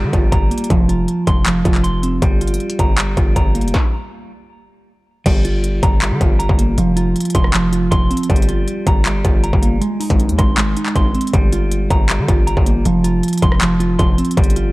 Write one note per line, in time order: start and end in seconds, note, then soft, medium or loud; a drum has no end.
0.00 0.13 D3 loud
0.00 0.70 G3 medium
0.00 0.12 F4 medium
0.00 0.31 A#5 medium
0.13 0.32 G1 loud
0.13 0.70 F4 medium
0.13 kick loud
0.13 closed hi-hat medium
0.32 0.50 G1 loud
0.32 0.70 A#5 medium
0.32 kick medium
0.32 closed hi-hat medium
0.51 0.70 A#3 medium
0.51 closed hi-hat medium
0.58 closed hi-hat medium
0.64 closed hi-hat medium
0.70 1.07 F1 loud
0.70 1.45 F3 loud
0.70 kick loud
0.70 closed hi-hat medium
0.89 1.64 F4 medium
0.89 closed hi-hat medium
1.08 closed hi-hat medium
1.27 1.64 F1 loud
1.27 1.82 C6 medium
1.27 kick loud
1.27 closed hi-hat medium
1.46 2.22 F3 medium
1.46 clap loud
1.46 closed hi-hat medium
1.65 2.20 F1 loud
1.65 2.22 F4 medium
1.65 kick loud
1.65 closed hi-hat medium
1.75 clap medium
1.84 2.22 C6 loud
1.84 closed hi-hat medium
2.03 2.22 C4 medium
2.03 closed hi-hat medium
2.22 2.59 G1 loud
2.22 2.97 G3 loud
2.22 kick loud
2.22 closed hi-hat medium
2.41 3.16 F4 medium
2.41 closed hi-hat medium
2.48 closed hi-hat medium
2.54 closed hi-hat medium
2.60 closed hi-hat soft
2.70 closed hi-hat medium
2.79 3.16 G1 loud
2.79 3.35 A#5 loud
2.79 kick medium
2.79 closed hi-hat medium
2.98 3.74 G3 medium
2.98 clap loud
2.98 closed hi-hat medium
3.17 3.35 G1 loud
3.17 3.74 F4 medium
3.17 kick loud
3.17 closed hi-hat medium
3.36 3.66 G1 loud
3.36 3.74 A#5 medium
3.36 kick medium
3.36 closed hi-hat medium
3.55 3.74 A#3 medium
3.55 closed hi-hat medium
3.61 3.74 F1 loud
3.61 closed hi-hat medium
3.68 closed hi-hat medium
3.74 kick loud
3.74 snare medium
5.26 5.81 G1 loud
5.26 6.01 G3 medium
5.26 kick loud
5.26 closed hi-hat medium
5.26 crash loud
5.45 6.20 F4 medium
5.45 closed hi-hat medium
5.64 closed hi-hat medium
5.83 6.13 G1 loud
5.83 6.38 A#5 medium
5.83 kick loud
5.83 closed hi-hat medium
6.02 6.78 G3 medium
6.02 clap loud
6.02 closed hi-hat medium
6.11 6.20 D3 loud
6.21 6.48 G1 loud
6.21 6.78 F4 medium
6.21 kick loud
6.21 closed hi-hat medium
6.39 6.78 A#5 loud
6.39 closed hi-hat medium
6.49 6.77 G1 loud
6.49 kick loud
6.58 6.78 A#3 medium
6.58 closed hi-hat medium
6.78 7.14 F1 loud
6.78 7.53 F3 loud
6.78 closed hi-hat medium
6.97 7.71 F4 medium
6.97 closed hi-hat medium
7.16 closed hi-hat medium
7.21 closed hi-hat medium
7.25 closed hi-hat medium
7.30 closed hi-hat medium
7.35 7.89 F1 loud
7.35 7.90 C6 medium
7.35 kick loud
7.35 closed hi-hat medium
7.44 cross-stick medium
7.54 8.30 F3 medium
7.54 clap loud
7.54 closed hi-hat medium
7.72 8.30 F4 medium
7.72 closed hi-hat medium
7.91 8.10 F1 loud
7.91 8.29 C6 loud
7.91 kick loud
7.91 closed hi-hat medium
8.11 8.30 C4 medium
8.11 closed hi-hat medium
8.17 closed hi-hat medium
8.23 closed hi-hat medium
8.29 8.66 G1 loud
8.29 9.04 G3 loud
8.29 kick loud
8.29 closed hi-hat medium
8.36 closed hi-hat medium
8.42 closed hi-hat medium
8.49 9.23 F4 medium
8.49 closed hi-hat medium
8.68 closed hi-hat medium
8.87 9.23 G1 loud
8.87 9.42 A#5 loud
8.87 kick loud
8.87 closed hi-hat medium
9.06 9.82 G3 loud
9.06 clap loud
9.06 closed hi-hat medium
9.25 9.52 G1 loud
9.25 9.82 F4 medium
9.25 kick loud
9.25 closed hi-hat medium
9.44 9.82 A#5 loud
9.44 closed hi-hat medium
9.53 9.80 G1 loud
9.53 kick loud
9.62 9.81 A#3 medium
9.62 closed hi-hat medium
9.81 10.56 G#3 loud
9.81 closed hi-hat medium
10.00 10.76 D#4 medium
10.00 closed hi-hat medium
10.00 open hi-hat medium
10.10 10.31 G#1 loud
10.10 kick medium
10.10 closed hi-hat medium
10.20 closed hi-hat medium
10.29 10.38 D#2 loud
10.29 closed hi-hat medium
10.38 10.75 G#1 loud
10.38 10.95 C6 medium
10.38 kick loud
10.38 cross-stick medium
10.38 closed hi-hat medium
10.57 11.33 G#3 loud
10.57 clap loud
10.57 closed hi-hat medium
10.77 11.15 D#4 medium
10.77 closed hi-hat medium
10.86 clap medium
10.96 11.14 G#1 loud
10.96 11.34 C6 loud
10.96 kick medium
10.96 closed hi-hat medium
11.15 11.34 C4 medium
11.15 closed hi-hat soft
11.21 closed hi-hat medium
11.27 closed hi-hat medium
11.34 11.88 G1 loud
11.34 12.09 G3 medium
11.34 kick loud
11.34 closed hi-hat medium
11.53 12.27 F4 medium
11.53 closed hi-hat medium
11.72 closed hi-hat medium
11.91 12.21 G1 loud
11.91 12.46 A#5 medium
11.91 kick loud
11.91 closed hi-hat medium
12.09 12.86 G3 loud
12.09 clap loud
12.09 closed hi-hat medium
12.19 12.28 D3 loud
12.28 12.56 G1 loud
12.28 12.85 F4 medium
12.28 kick loud
12.28 closed hi-hat medium
12.47 12.85 A#5 medium
12.47 closed hi-hat medium
12.57 12.84 G1 loud
12.57 kick loud
12.66 12.85 A#3 medium
12.66 closed hi-hat medium
12.85 13.22 F1 loud
12.85 13.61 F3 loud
12.85 closed hi-hat medium
13.04 13.79 F4 medium
13.04 closed hi-hat medium
13.23 closed hi-hat medium
13.28 closed hi-hat medium
13.33 closed hi-hat medium
13.38 closed hi-hat medium
13.42 13.97 F1 loud
13.42 13.98 C6 loud
13.42 kick loud
13.42 closed hi-hat medium
13.52 cross-stick medium
13.61 14.37 F3 medium
13.61 clap loud
13.61 closed hi-hat medium
13.80 14.37 F4 medium
13.80 closed hi-hat medium
13.99 14.18 F1 loud
13.99 14.37 C6 loud
13.99 kick medium
13.99 closed hi-hat medium
14.18 14.37 C4 medium
14.18 closed hi-hat medium
14.25 closed hi-hat medium
14.31 closed hi-hat medium
14.37 14.72 G1 loud
14.37 14.72 G3 loud
14.37 kick loud
14.37 closed hi-hat medium
14.44 closed hi-hat medium
14.50 closed hi-hat medium
14.56 14.72 F4 medium
14.56 closed hi-hat medium